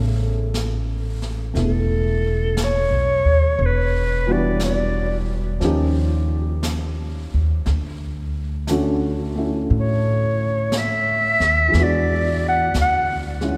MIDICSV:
0, 0, Header, 1, 5, 480
1, 0, Start_track
1, 0, Tempo, 1016949
1, 1690, Time_signature, 4, 2, 24, 8
1, 6406, End_track
2, 0, Start_track
2, 0, Title_t, "Clarinet"
2, 0, Program_c, 0, 71
2, 768, Note_on_c, 0, 69, 60
2, 1244, Note_on_c, 0, 73, 74
2, 1251, Note_off_c, 0, 69, 0
2, 1726, Note_on_c, 0, 71, 67
2, 1733, Note_off_c, 0, 73, 0
2, 2038, Note_on_c, 0, 74, 69
2, 2045, Note_off_c, 0, 71, 0
2, 2182, Note_off_c, 0, 74, 0
2, 2191, Note_on_c, 0, 74, 61
2, 2487, Note_off_c, 0, 74, 0
2, 4625, Note_on_c, 0, 73, 67
2, 5088, Note_on_c, 0, 76, 85
2, 5095, Note_off_c, 0, 73, 0
2, 5582, Note_on_c, 0, 74, 72
2, 5589, Note_off_c, 0, 76, 0
2, 5881, Note_off_c, 0, 74, 0
2, 5891, Note_on_c, 0, 78, 79
2, 6019, Note_off_c, 0, 78, 0
2, 6048, Note_on_c, 0, 78, 79
2, 6231, Note_off_c, 0, 78, 0
2, 6406, End_track
3, 0, Start_track
3, 0, Title_t, "Upright piano"
3, 0, Program_c, 1, 0
3, 0, Control_c, 1, 64, 127
3, 0, Note_on_c, 1, 49, 43
3, 0, Note_on_c, 1, 57, 40
3, 0, Note_on_c, 1, 59, 38
3, 0, Note_on_c, 1, 61, 43
3, 0, Note_on_c, 1, 69, 52
3, 718, Note_off_c, 1, 57, 0
3, 725, Note_off_c, 1, 59, 0
3, 725, Note_on_c, 1, 57, 39
3, 732, Note_on_c, 1, 59, 36
3, 739, Note_on_c, 1, 64, 41
3, 1688, Note_off_c, 1, 57, 0
3, 1692, Note_off_c, 1, 59, 0
3, 1695, Note_off_c, 1, 49, 0
3, 1695, Control_c, 1, 64, 0
3, 1696, Note_off_c, 1, 61, 0
3, 1696, Note_off_c, 1, 64, 0
3, 1699, Note_off_c, 1, 69, 0
3, 1777, Control_c, 1, 64, 127
3, 2016, Note_on_c, 1, 52, 52
3, 2021, Note_on_c, 1, 59, 48
3, 2022, Note_on_c, 1, 55, 45
3, 2025, Note_on_c, 1, 62, 44
3, 2026, Note_on_c, 1, 66, 54
3, 2645, Note_on_c, 1, 53, 52
3, 2651, Note_off_c, 1, 52, 0
3, 2651, Note_on_c, 1, 58, 44
3, 2654, Note_off_c, 1, 55, 0
3, 2654, Note_off_c, 1, 59, 0
3, 2656, Note_off_c, 1, 62, 0
3, 2656, Note_off_c, 1, 66, 0
3, 2658, Control_c, 1, 64, 0
3, 2658, Note_on_c, 1, 61, 49
3, 2665, Note_on_c, 1, 63, 48
3, 2666, Note_on_c, 1, 67, 55
3, 2737, Control_c, 1, 64, 127
3, 3612, Note_off_c, 1, 53, 0
3, 3615, Note_off_c, 1, 58, 0
3, 3619, Note_off_c, 1, 61, 0
3, 3621, Control_c, 1, 64, 0
3, 3622, Note_off_c, 1, 63, 0
3, 3623, Note_off_c, 1, 67, 0
3, 3697, Control_c, 1, 64, 127
3, 4103, Note_on_c, 1, 50, 51
3, 4105, Note_on_c, 1, 61, 47
3, 4107, Note_on_c, 1, 62, 45
3, 4108, Note_on_c, 1, 57, 47
3, 4111, Note_on_c, 1, 66, 54
3, 4408, Note_off_c, 1, 57, 0
3, 4415, Note_on_c, 1, 57, 39
3, 4418, Note_off_c, 1, 61, 0
3, 4425, Note_on_c, 1, 61, 34
3, 4430, Note_on_c, 1, 64, 43
3, 5515, Note_on_c, 1, 52, 52
3, 5530, Note_on_c, 1, 56, 47
3, 5534, Note_off_c, 1, 57, 0
3, 5538, Note_off_c, 1, 50, 0
3, 5539, Note_off_c, 1, 61, 0
3, 5540, Note_off_c, 1, 62, 0
3, 5540, Control_c, 1, 64, 0
3, 5541, Note_off_c, 1, 64, 0
3, 5542, Note_off_c, 1, 66, 0
3, 5545, Note_on_c, 1, 59, 46
3, 5552, Note_on_c, 1, 62, 47
3, 5567, Note_on_c, 1, 66, 61
3, 5622, Control_c, 1, 64, 127
3, 6322, Note_off_c, 1, 56, 0
3, 6329, Note_on_c, 1, 56, 39
3, 6334, Note_on_c, 1, 61, 39
3, 6342, Note_on_c, 1, 64, 45
3, 6406, Note_off_c, 1, 52, 0
3, 6406, Note_off_c, 1, 56, 0
3, 6406, Note_off_c, 1, 59, 0
3, 6406, Note_off_c, 1, 61, 0
3, 6406, Note_off_c, 1, 62, 0
3, 6406, Note_off_c, 1, 64, 0
3, 6406, Note_off_c, 1, 66, 0
3, 6406, End_track
4, 0, Start_track
4, 0, Title_t, "Upright bass"
4, 0, Program_c, 2, 32
4, 0, Note_on_c, 2, 33, 80
4, 712, Note_off_c, 2, 33, 0
4, 730, Note_on_c, 2, 28, 71
4, 1350, Note_off_c, 2, 28, 0
4, 1371, Note_on_c, 2, 35, 55
4, 1519, Note_off_c, 2, 35, 0
4, 1535, Note_on_c, 2, 39, 62
4, 1681, Note_off_c, 2, 39, 0
4, 1693, Note_on_c, 2, 28, 77
4, 2634, Note_off_c, 2, 28, 0
4, 2647, Note_on_c, 2, 39, 73
4, 3439, Note_off_c, 2, 39, 0
4, 3464, Note_on_c, 2, 39, 60
4, 3607, Note_off_c, 2, 39, 0
4, 3618, Note_on_c, 2, 38, 76
4, 4560, Note_off_c, 2, 38, 0
4, 4580, Note_on_c, 2, 45, 74
4, 5363, Note_off_c, 2, 45, 0
4, 5382, Note_on_c, 2, 39, 66
4, 5525, Note_off_c, 2, 39, 0
4, 5539, Note_on_c, 2, 40, 80
4, 5995, Note_off_c, 2, 40, 0
4, 6018, Note_on_c, 2, 38, 69
4, 6406, Note_off_c, 2, 38, 0
4, 6406, End_track
5, 0, Start_track
5, 0, Title_t, "Drums"
5, 255, Note_on_c, 9, 25, 38
5, 255, Note_on_c, 9, 38, 40
5, 255, Note_on_c, 9, 44, 48
5, 303, Note_off_c, 9, 38, 0
5, 303, Note_off_c, 9, 44, 0
5, 576, Note_on_c, 9, 38, 27
5, 624, Note_off_c, 9, 38, 0
5, 733, Note_off_c, 9, 25, 0
5, 733, Note_on_c, 9, 25, 39
5, 733, Note_on_c, 9, 38, 27
5, 780, Note_off_c, 9, 38, 0
5, 1213, Note_off_c, 9, 25, 0
5, 1213, Note_on_c, 9, 25, 39
5, 1213, Note_on_c, 9, 38, 45
5, 1213, Note_on_c, 9, 44, 56
5, 1260, Note_off_c, 9, 38, 0
5, 1260, Note_off_c, 9, 44, 0
5, 1688, Note_off_c, 9, 25, 0
5, 1688, Note_on_c, 9, 25, 33
5, 2169, Note_off_c, 9, 25, 0
5, 2169, Note_on_c, 9, 25, 36
5, 2169, Note_on_c, 9, 38, 43
5, 2169, Note_on_c, 9, 44, 50
5, 2216, Note_off_c, 9, 38, 0
5, 2216, Note_off_c, 9, 44, 0
5, 2647, Note_off_c, 9, 25, 0
5, 2647, Note_on_c, 9, 25, 29
5, 2647, Note_on_c, 9, 38, 27
5, 2695, Note_off_c, 9, 38, 0
5, 3129, Note_off_c, 9, 25, 0
5, 3129, Note_on_c, 9, 25, 34
5, 3129, Note_on_c, 9, 38, 47
5, 3129, Note_on_c, 9, 44, 60
5, 3176, Note_off_c, 9, 38, 0
5, 3176, Note_off_c, 9, 44, 0
5, 3615, Note_off_c, 9, 25, 0
5, 3615, Note_on_c, 9, 25, 30
5, 3615, Note_on_c, 9, 38, 26
5, 3662, Note_off_c, 9, 38, 0
5, 4094, Note_off_c, 9, 25, 0
5, 4094, Note_on_c, 9, 25, 35
5, 4094, Note_on_c, 9, 38, 40
5, 4094, Note_on_c, 9, 44, 49
5, 4141, Note_off_c, 9, 38, 0
5, 4141, Note_off_c, 9, 44, 0
5, 4576, Note_off_c, 9, 25, 0
5, 4576, Note_on_c, 9, 25, 30
5, 5060, Note_off_c, 9, 25, 0
5, 5060, Note_on_c, 9, 25, 34
5, 5060, Note_on_c, 9, 38, 43
5, 5060, Note_on_c, 9, 44, 59
5, 5107, Note_off_c, 9, 38, 0
5, 5107, Note_off_c, 9, 44, 0
5, 5381, Note_on_c, 9, 38, 26
5, 5428, Note_off_c, 9, 38, 0
5, 5538, Note_off_c, 9, 25, 0
5, 5538, Note_on_c, 9, 25, 35
5, 5538, Note_on_c, 9, 38, 29
5, 5585, Note_off_c, 9, 38, 0
5, 6014, Note_off_c, 9, 25, 0
5, 6014, Note_on_c, 9, 25, 33
5, 6014, Note_on_c, 9, 38, 46
5, 6014, Note_on_c, 9, 44, 42
5, 6061, Note_off_c, 9, 38, 0
5, 6061, Note_off_c, 9, 44, 0
5, 6330, Note_on_c, 9, 38, 28
5, 6378, Note_off_c, 9, 38, 0
5, 6406, Note_off_c, 9, 25, 0
5, 6406, End_track
0, 0, End_of_file